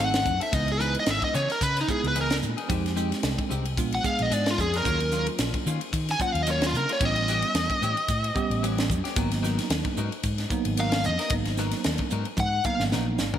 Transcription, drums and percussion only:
0.14 snare, ride
0.25 kick, hi-hat pedal
0.41 ride
0.53 kick, hi-hat pedal, ride
0.68 ride
0.80 snare, hi-hat pedal
0.95 ride
1.06 snare, hi-hat pedal, ride
1.22 kick, ride
1.34 hi-hat pedal
1.50 snare, ride
1.61 kick, hi-hat pedal, ride
1.77 snare, ride
1.88 kick, hi-hat pedal
2.04 ride
2.16 hi-hat pedal, ride
2.30 snare, ride
2.42 hi-hat pedal
2.58 ride
2.70 kick, hi-hat pedal, ride
2.86 snare, ride
2.97 hi-hat pedal
3.12 snare, ride
3.23 snare, hi-hat pedal, ride
3.39 kick, ride
3.50 hi-hat pedal
3.65 ride
3.77 kick, hi-hat pedal, ride
3.92 ride
4.04 kick, hi-hat pedal
4.19 ride
4.32 hi-hat pedal, ride
4.46 snare, ride
4.58 kick, hi-hat pedal
4.74 snare, ride
4.85 kick, hi-hat pedal, ride
5.00 ride
5.12 snare, hi-hat pedal
5.27 ride
5.39 snare, hi-hat pedal, ride
5.54 kick, ride
5.66 hi-hat pedal
5.81 ride
5.93 kick, hi-hat pedal, ride
6.09 snare, ride
6.20 kick, hi-hat pedal
6.35 ride
6.47 hi-hat pedal, ride
6.62 snare, ride
6.74 hi-hat pedal
6.89 ride
7.01 kick, hi-hat pedal, ride
7.16 ride
7.28 snare, hi-hat pedal
7.42 ride
7.55 snare, hi-hat pedal, ride
7.70 kick, ride
7.82 hi-hat pedal
7.97 ride
8.08 kick, hi-hat pedal, ride
8.24 ride
8.36 kick, hi-hat pedal
8.51 ride
8.64 hi-hat pedal, ride
8.78 snare, ride
8.90 kick, hi-hat pedal
9.05 snare, ride
9.16 kick, hi-hat pedal, ride
9.32 snare, ride
9.44 snare, hi-hat pedal
9.59 snare, ride
9.70 snare, hi-hat pedal, ride
9.85 kick, ride
9.97 hi-hat pedal
10.12 ride
10.23 kick, hi-hat pedal, ride
10.38 snare, ride
10.50 kick, hi-hat pedal
10.65 ride
10.77 hi-hat pedal, ride
10.92 snare, ride
11.04 hi-hat pedal
11.19 snare, ride
11.30 kick, hi-hat pedal, ride
11.45 snare, ride
11.57 snare, hi-hat pedal
11.71 snare, ride
11.84 snare, hi-hat pedal, ride
11.98 kick, ride
12.10 hi-hat pedal
12.25 ride
12.37 kick, hi-hat pedal, high tom
12.64 kick, hi-hat pedal
12.80 snare
12.92 snare, hi-hat pedal
13.18 snare, hi-hat pedal
13.34 floor tom

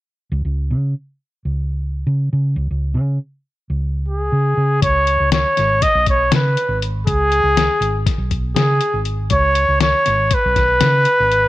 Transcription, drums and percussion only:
4.82 kick, closed hi-hat
5.07 closed hi-hat
5.32 snare, closed hi-hat
5.57 snare, closed hi-hat
5.82 kick, snare, closed hi-hat
6.06 kick, closed hi-hat
6.32 snare, closed hi-hat
6.57 closed hi-hat
6.82 closed hi-hat
7.07 kick, closed hi-hat
7.32 closed hi-hat
7.57 snare, closed hi-hat
7.82 closed hi-hat
8.06 kick, snare, closed hi-hat
8.31 kick, closed hi-hat
8.56 snare, closed hi-hat
8.81 closed hi-hat
9.05 closed hi-hat
9.30 kick, closed hi-hat
9.55 closed hi-hat
9.80 snare, closed hi-hat
10.06 snare, closed hi-hat
10.31 kick, closed hi-hat
10.56 kick, snare, closed hi-hat
10.81 snare, closed hi-hat
11.05 closed hi-hat
11.32 closed hi-hat

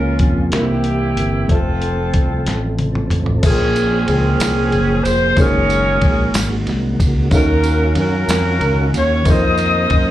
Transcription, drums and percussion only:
0.19 kick, closed hi-hat
0.52 snare, closed hi-hat
0.84 closed hi-hat
1.17 closed hi-hat
1.49 kick, closed hi-hat
1.82 closed hi-hat
2.14 kick, closed hi-hat
2.46 snare, closed hi-hat
2.79 closed hi-hat, high tom
2.95 mid tom
3.10 closed hi-hat, mid tom
3.26 floor tom
3.43 kick, crash, ride, tambourine
3.76 ride, tambourine
4.08 ride
4.40 snare, ride, tambourine
4.72 ride
5.05 ride, tambourine
5.37 kick, ride, tambourine
5.70 ride, tambourine
6.01 kick, ride
6.34 snare, ride, tambourine
6.67 snare, ride
7.00 kick, ride, tambourine
7.31 kick, ride, tambourine
7.64 ride, tambourine
7.95 ride
8.29 snare, ride, tambourine
8.61 ride
8.94 ride, tambourine
9.25 kick, ride, tambourine
9.57 ride, tambourine
9.90 kick, ride

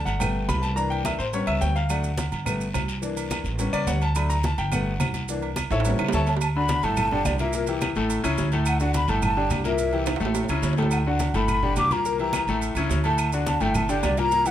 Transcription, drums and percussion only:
0.07 high conga, low agogo, short guiro, maracas
0.20 high conga, low conga, low agogo, claves, maracas
0.35 high conga
0.49 high conga, low timbale, low agogo, short guiro, claves, maracas
0.63 low agogo, short guiro, maracas
0.77 high conga, long guiro, maracas
0.91 high conga, low agogo
1.05 high conga, low timbale, low agogo, short guiro, claves, maracas
1.20 short guiro, maracas
1.33 high conga, low agogo, long guiro, maracas
1.47 high conga, low agogo, claves
1.61 low timbale, short guiro, maracas
1.75 low agogo, short guiro, maracas
1.89 high conga, low agogo, claves, maracas
2.04 high conga, maracas
2.17 high conga, low timbale, low agogo, short guiro, maracas
2.32 high conga, low agogo, short guiro, maracas
2.46 high conga, low conga, low agogo, long guiro, claves, maracas
2.60 high conga, maracas
2.74 high conga, low timbale, low agogo, short guiro, claves, maracas
2.88 low agogo, short guiro, maracas
3.03 high conga, long guiro, maracas
3.17 high conga, low agogo, maracas
3.31 high conga, low timbale, low agogo, short guiro, claves, maracas
3.45 short guiro, maracas
3.59 high conga, low agogo, long guiro, maracas
3.73 high conga, low agogo, claves, maracas
3.87 high conga, low timbale, short guiro, maracas
4.01 low agogo, short guiro, maracas
4.15 high conga, low agogo, long guiro, claves, maracas
4.30 high conga, maracas
4.43 high conga, low timbale, low agogo, short guiro, maracas
4.58 high conga, low agogo, short guiro, maracas
4.72 high conga, low conga, low agogo, long guiro, claves, maracas
4.86 high conga
5.00 high conga, low timbale, low agogo, short guiro, claves, maracas
5.14 high conga, low agogo, short guiro, maracas
5.28 high conga, long guiro, maracas
5.42 high conga, low agogo
5.56 high conga, low timbale, low agogo, short guiro, claves, maracas
5.71 high timbale, short guiro, maracas
5.80 high timbale
5.85 high conga, low agogo, maracas
5.90 low timbale
5.99 high conga, high timbale, low agogo, claves
6.09 low timbale
6.13 high conga, short guiro, maracas
6.27 low timbale, low agogo, short guiro, maracas
6.37 low timbale, long guiro
6.41 high conga, low agogo, claves, maracas
6.56 high conga
6.68 high conga, low timbale, low agogo, short guiro, maracas
6.83 high conga, low agogo, short guiro, maracas
6.97 high conga, low conga, low agogo, long guiro, claves, maracas
7.11 high conga, low conga
7.25 high conga, low timbale, low agogo, short guiro, claves, maracas
7.38 low agogo, short guiro, maracas
7.53 high conga, long guiro, maracas
7.67 high conga, low agogo, maracas
7.81 high conga, low timbale, low agogo, short guiro, claves, maracas
7.95 short guiro, maracas
8.10 high conga, low agogo, maracas
8.24 high conga, low agogo, claves, maracas
8.38 high conga, low timbale, short guiro, maracas
8.52 low agogo, short guiro, maracas
8.65 low agogo, long guiro, claves, maracas
8.80 high conga, maracas
8.94 high conga, low timbale, low agogo, short guiro, maracas
9.08 high conga, low agogo, short guiro, maracas
9.22 high conga, low conga, low agogo, long guiro, claves, maracas
9.37 high conga
9.50 high conga, low timbale, low agogo, short guiro, claves, maracas
9.64 low agogo, short guiro, maracas
9.78 high conga, long guiro, maracas
9.93 high conga, low agogo
10.06 high conga, high timbale, low agogo, short guiro, claves, maracas
10.16 high timbale
10.20 short guiro, maracas
10.25 low timbale
10.35 high conga, low timbale, low agogo, long guiro, maracas
10.44 low timbale
10.49 high conga, low agogo, claves, maracas
10.63 low timbale, short guiro, maracas
10.73 low timbale
10.77 low agogo, short guiro, maracas
10.82 low timbale
10.91 high conga, low agogo, long guiro, claves, maracas
11.06 high conga
11.19 high conga, low timbale, low agogo, short guiro, maracas
11.34 high conga, low agogo, short guiro, maracas
11.48 high conga, low conga, low agogo, claves, maracas
11.63 high conga, low conga
11.76 high conga, low timbale, low agogo, short guiro, claves, maracas
11.91 high conga, low agogo, short guiro, maracas
12.04 high conga, long guiro, maracas
12.18 high conga, low agogo
12.33 high conga, low timbale, low agogo, short guiro, claves, maracas
12.48 short guiro, maracas
12.61 high conga, low agogo, long guiro, maracas
12.75 high conga, low agogo, claves, maracas
12.89 high conga, low timbale, short guiro, maracas
13.04 low agogo, short guiro, maracas
13.18 high conga, low agogo, long guiro, claves, maracas
13.32 high conga, maracas
13.46 high conga, low timbale, low agogo, short guiro, maracas
13.60 low agogo, short guiro, maracas
13.74 high conga, low conga, low agogo, long guiro, claves, maracas
13.89 high conga, maracas
14.03 high conga, low timbale, low agogo, short guiro, claves, maracas
14.17 low agogo, short guiro, maracas
14.32 high conga, long guiro, maracas
14.45 high conga, low agogo, maracas

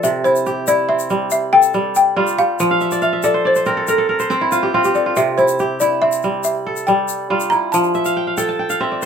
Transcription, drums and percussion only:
0.04 shaker
0.25 shaker
0.36 shaker
0.46 shaker
0.67 shaker
0.99 shaker
1.10 shaker
1.31 shaker
1.62 shaker
1.73 shaker
1.95 shaker
2.27 shaker
2.38 shaker
2.59 shaker
2.81 shaker
2.91 shaker
3.01 shaker
3.23 shaker
3.55 shaker
3.66 shaker
3.87 shaker
4.20 shaker
4.30 shaker
4.52 shaker
4.84 shaker
4.95 shaker
5.16 shaker
5.38 shaker
5.48 shaker
5.59 shaker
5.80 shaker
6.12 shaker
6.22 shaker
6.44 shaker
6.76 shaker
6.87 shaker
7.08 shaker
7.40 shaker
7.51 shaker
7.73 shaker
7.84 shaker
7.94 shaker
8.05 shaker
8.37 shaker
8.70 shaker
9.02 shaker

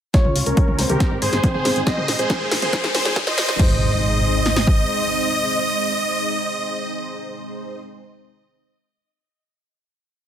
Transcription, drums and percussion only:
0.14 kick, snare, closed hi-hat
0.25 mid tom
0.36 open hi-hat
0.46 closed hi-hat
0.57 kick, closed hi-hat
0.68 mid tom
0.79 snare, open hi-hat
0.89 closed hi-hat, mid tom
1.00 kick, snare, closed hi-hat
1.22 open hi-hat
1.33 snare, closed hi-hat
1.44 kick, closed hi-hat
1.54 mid tom
1.65 snare, open hi-hat
1.76 closed hi-hat
1.87 kick, snare, closed hi-hat
1.98 mid tom
2.08 snare, open hi-hat
2.19 closed hi-hat
2.30 kick, snare, closed hi-hat
2.51 snare, open hi-hat
2.62 closed hi-hat, mid tom
2.73 kick, snare, closed hi-hat
2.84 snare
2.95 snare, open hi-hat
3.05 snare, closed hi-hat
3.16 kick, snare, closed hi-hat
3.27 snare
3.38 snare, open hi-hat
3.49 snare, closed hi-hat
3.59 kick, crash
4.46 snare
4.56 snare
4.67 kick

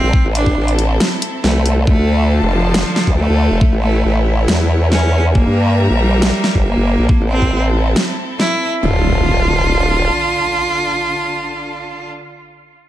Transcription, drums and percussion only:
0.13 kick
0.35 closed hi-hat
0.46 kick
0.68 closed hi-hat
0.79 closed hi-hat
1.00 snare
1.22 closed hi-hat
1.44 snare
1.66 closed hi-hat
1.87 kick
2.74 snare
2.96 snare
3.07 kick
3.61 kick
4.48 snare
4.92 snare
5.35 kick
6.22 snare
6.44 snare
6.55 kick
7.09 kick
7.42 kick
7.96 snare
8.40 snare

